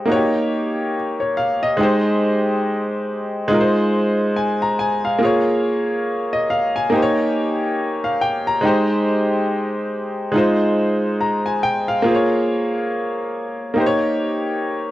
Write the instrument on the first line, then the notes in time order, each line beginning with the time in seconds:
grand piano
Already playing: G#3 D#4 G4 C5
0.05 A#3 D#4
0.10 F#4 C#5
0.16 G4
1.20 C#5
1.37 F5
1.63 D#5
1.77 G#3 D#4 G4
1.83 C5
3.48 G#3 D#4 F4
3.54 A#4
3.60 C5
4.36 G#5
4.62 A#5
4.79 G#5
5.05 F5
5.19 A#3 F4 G#4
5.25 C#5
6.33 D#5
6.50 F5
6.76 G#5
6.90 A#3 D#4 G4
6.96 C5
7.02 C#5
8.04 F5
8.21 G5
8.47 A#5
8.61 G#3 D#4
8.65 G4 C5
10.32 G#3 D#4
10.36 F4 C5
11.21 A#5
11.46 G#5
11.63 G5
11.88 F5
12.02 A#3 F4 G#4
12.08 C5
12.15 C#5
13.74 A#3 D#4 G4
13.80 C5
13.86 C#5